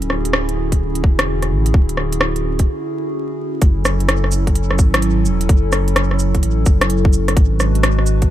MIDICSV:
0, 0, Header, 1, 4, 480
1, 0, Start_track
1, 0, Key_signature, 3, "minor"
1, 0, Tempo, 468750
1, 1784, Time_signature, 4, 2, 24, 8
1, 8503, End_track
2, 0, Start_track
2, 0, Title_t, "Ambient pad"
2, 0, Program_c, 0, 92
2, 0, Note_on_c, 0, 50, 77
2, 0, Note_on_c, 0, 61, 71
2, 0, Note_on_c, 0, 64, 68
2, 0, Note_on_c, 0, 66, 75
2, 0, Note_on_c, 0, 68, 88
2, 3660, Note_off_c, 0, 61, 0
2, 3665, Note_off_c, 0, 64, 0
2, 3666, Note_off_c, 0, 66, 0
2, 3666, Note_off_c, 0, 68, 0
2, 3667, Note_off_c, 0, 50, 0
2, 3701, Note_on_c, 0, 64, 71
2, 3703, Note_on_c, 0, 69, 89
2, 3704, Note_on_c, 0, 54, 78
2, 3704, Note_on_c, 0, 61, 73
2, 7504, Note_off_c, 0, 64, 0
2, 7505, Note_off_c, 0, 54, 0
2, 7505, Note_off_c, 0, 61, 0
2, 7505, Note_off_c, 0, 69, 0
2, 7539, Note_on_c, 0, 62, 70
2, 7541, Note_on_c, 0, 56, 81
2, 7542, Note_on_c, 0, 66, 75
2, 7542, Note_on_c, 0, 71, 90
2, 8503, Note_off_c, 0, 56, 0
2, 8503, Note_off_c, 0, 62, 0
2, 8503, Note_off_c, 0, 66, 0
2, 8503, Note_off_c, 0, 71, 0
2, 8503, End_track
3, 0, Start_track
3, 0, Title_t, "Sub bass"
3, 0, Program_c, 1, 38
3, 0, Note_on_c, 1, 26, 105
3, 1063, Note_on_c, 1, 28, 96
3, 1078, Note_off_c, 1, 26, 0
3, 1544, Note_on_c, 1, 33, 101
3, 1559, Note_off_c, 1, 28, 0
3, 1770, Note_off_c, 1, 33, 0
3, 1783, Note_on_c, 1, 26, 99
3, 2733, Note_off_c, 1, 26, 0
3, 3702, Note_on_c, 1, 30, 104
3, 4903, Note_on_c, 1, 32, 90
3, 4918, Note_off_c, 1, 30, 0
3, 5382, Note_on_c, 1, 28, 102
3, 5398, Note_off_c, 1, 32, 0
3, 5609, Note_off_c, 1, 28, 0
3, 5623, Note_on_c, 1, 30, 104
3, 6572, Note_off_c, 1, 30, 0
3, 6583, Note_on_c, 1, 33, 88
3, 6810, Note_off_c, 1, 33, 0
3, 6824, Note_on_c, 1, 30, 111
3, 7533, Note_off_c, 1, 30, 0
3, 7544, Note_on_c, 1, 32, 103
3, 8503, Note_off_c, 1, 32, 0
3, 8503, End_track
4, 0, Start_track
4, 0, Title_t, "Drums"
4, 20, Note_on_c, 9, 42, 31
4, 102, Note_on_c, 9, 37, 54
4, 122, Note_off_c, 9, 42, 0
4, 204, Note_off_c, 9, 37, 0
4, 257, Note_on_c, 9, 42, 52
4, 341, Note_on_c, 9, 37, 100
4, 359, Note_off_c, 9, 42, 0
4, 444, Note_off_c, 9, 37, 0
4, 499, Note_on_c, 9, 42, 32
4, 602, Note_off_c, 9, 42, 0
4, 738, Note_on_c, 9, 36, 55
4, 739, Note_on_c, 9, 42, 53
4, 840, Note_off_c, 9, 36, 0
4, 841, Note_off_c, 9, 42, 0
4, 976, Note_on_c, 9, 42, 42
4, 1063, Note_on_c, 9, 36, 93
4, 1079, Note_off_c, 9, 42, 0
4, 1165, Note_off_c, 9, 36, 0
4, 1218, Note_on_c, 9, 37, 97
4, 1218, Note_on_c, 9, 42, 53
4, 1320, Note_off_c, 9, 37, 0
4, 1320, Note_off_c, 9, 42, 0
4, 1459, Note_on_c, 9, 37, 35
4, 1459, Note_on_c, 9, 42, 41
4, 1561, Note_off_c, 9, 37, 0
4, 1561, Note_off_c, 9, 42, 0
4, 1698, Note_on_c, 9, 42, 52
4, 1782, Note_on_c, 9, 36, 112
4, 1801, Note_off_c, 9, 42, 0
4, 1884, Note_off_c, 9, 36, 0
4, 1937, Note_on_c, 9, 42, 32
4, 2021, Note_on_c, 9, 37, 54
4, 2039, Note_off_c, 9, 42, 0
4, 2123, Note_off_c, 9, 37, 0
4, 2176, Note_on_c, 9, 42, 57
4, 2259, Note_on_c, 9, 37, 96
4, 2278, Note_off_c, 9, 42, 0
4, 2361, Note_off_c, 9, 37, 0
4, 2416, Note_on_c, 9, 42, 32
4, 2518, Note_off_c, 9, 42, 0
4, 2653, Note_on_c, 9, 42, 55
4, 2658, Note_on_c, 9, 36, 60
4, 2756, Note_off_c, 9, 42, 0
4, 2760, Note_off_c, 9, 36, 0
4, 3702, Note_on_c, 9, 42, 58
4, 3703, Note_on_c, 9, 36, 116
4, 3804, Note_off_c, 9, 42, 0
4, 3805, Note_off_c, 9, 36, 0
4, 3944, Note_on_c, 9, 37, 73
4, 3944, Note_on_c, 9, 69, 73
4, 4046, Note_off_c, 9, 37, 0
4, 4046, Note_off_c, 9, 69, 0
4, 4100, Note_on_c, 9, 42, 34
4, 4183, Note_off_c, 9, 42, 0
4, 4183, Note_on_c, 9, 37, 102
4, 4183, Note_on_c, 9, 42, 55
4, 4286, Note_off_c, 9, 37, 0
4, 4286, Note_off_c, 9, 42, 0
4, 4341, Note_on_c, 9, 37, 40
4, 4422, Note_on_c, 9, 69, 77
4, 4444, Note_off_c, 9, 37, 0
4, 4524, Note_off_c, 9, 69, 0
4, 4579, Note_on_c, 9, 36, 64
4, 4580, Note_on_c, 9, 42, 33
4, 4664, Note_off_c, 9, 42, 0
4, 4664, Note_on_c, 9, 42, 60
4, 4681, Note_off_c, 9, 36, 0
4, 4767, Note_off_c, 9, 42, 0
4, 4819, Note_on_c, 9, 37, 54
4, 4903, Note_on_c, 9, 36, 104
4, 4903, Note_on_c, 9, 69, 70
4, 4921, Note_off_c, 9, 37, 0
4, 5006, Note_off_c, 9, 36, 0
4, 5006, Note_off_c, 9, 69, 0
4, 5059, Note_on_c, 9, 37, 106
4, 5059, Note_on_c, 9, 42, 62
4, 5144, Note_off_c, 9, 42, 0
4, 5144, Note_on_c, 9, 42, 58
4, 5161, Note_off_c, 9, 37, 0
4, 5246, Note_off_c, 9, 42, 0
4, 5383, Note_on_c, 9, 69, 72
4, 5486, Note_off_c, 9, 69, 0
4, 5538, Note_on_c, 9, 42, 57
4, 5624, Note_off_c, 9, 42, 0
4, 5624, Note_on_c, 9, 36, 122
4, 5624, Note_on_c, 9, 42, 57
4, 5726, Note_off_c, 9, 36, 0
4, 5727, Note_off_c, 9, 42, 0
4, 5862, Note_on_c, 9, 37, 65
4, 5862, Note_on_c, 9, 69, 73
4, 5965, Note_off_c, 9, 37, 0
4, 5965, Note_off_c, 9, 69, 0
4, 6018, Note_on_c, 9, 42, 33
4, 6103, Note_off_c, 9, 42, 0
4, 6103, Note_on_c, 9, 37, 107
4, 6103, Note_on_c, 9, 42, 55
4, 6205, Note_off_c, 9, 37, 0
4, 6205, Note_off_c, 9, 42, 0
4, 6259, Note_on_c, 9, 37, 38
4, 6342, Note_on_c, 9, 69, 71
4, 6361, Note_off_c, 9, 37, 0
4, 6445, Note_off_c, 9, 69, 0
4, 6498, Note_on_c, 9, 42, 32
4, 6499, Note_on_c, 9, 36, 64
4, 6583, Note_off_c, 9, 42, 0
4, 6583, Note_on_c, 9, 42, 60
4, 6601, Note_off_c, 9, 36, 0
4, 6686, Note_off_c, 9, 42, 0
4, 6821, Note_on_c, 9, 69, 70
4, 6823, Note_on_c, 9, 36, 105
4, 6923, Note_off_c, 9, 69, 0
4, 6925, Note_off_c, 9, 36, 0
4, 6977, Note_on_c, 9, 37, 108
4, 6977, Note_on_c, 9, 42, 62
4, 7063, Note_off_c, 9, 42, 0
4, 7063, Note_on_c, 9, 42, 60
4, 7080, Note_off_c, 9, 37, 0
4, 7165, Note_off_c, 9, 42, 0
4, 7218, Note_on_c, 9, 36, 110
4, 7303, Note_on_c, 9, 69, 65
4, 7321, Note_off_c, 9, 36, 0
4, 7405, Note_off_c, 9, 69, 0
4, 7456, Note_on_c, 9, 37, 58
4, 7456, Note_on_c, 9, 42, 59
4, 7542, Note_on_c, 9, 36, 124
4, 7543, Note_off_c, 9, 42, 0
4, 7543, Note_on_c, 9, 42, 55
4, 7559, Note_off_c, 9, 37, 0
4, 7645, Note_off_c, 9, 36, 0
4, 7646, Note_off_c, 9, 42, 0
4, 7782, Note_on_c, 9, 37, 63
4, 7782, Note_on_c, 9, 69, 70
4, 7884, Note_off_c, 9, 37, 0
4, 7884, Note_off_c, 9, 69, 0
4, 7938, Note_on_c, 9, 42, 33
4, 8022, Note_off_c, 9, 42, 0
4, 8022, Note_on_c, 9, 37, 110
4, 8022, Note_on_c, 9, 42, 57
4, 8124, Note_off_c, 9, 37, 0
4, 8124, Note_off_c, 9, 42, 0
4, 8177, Note_on_c, 9, 37, 37
4, 8260, Note_on_c, 9, 69, 73
4, 8280, Note_off_c, 9, 37, 0
4, 8362, Note_off_c, 9, 69, 0
4, 8416, Note_on_c, 9, 42, 33
4, 8418, Note_on_c, 9, 36, 68
4, 8503, Note_off_c, 9, 36, 0
4, 8503, Note_off_c, 9, 42, 0
4, 8503, End_track
0, 0, End_of_file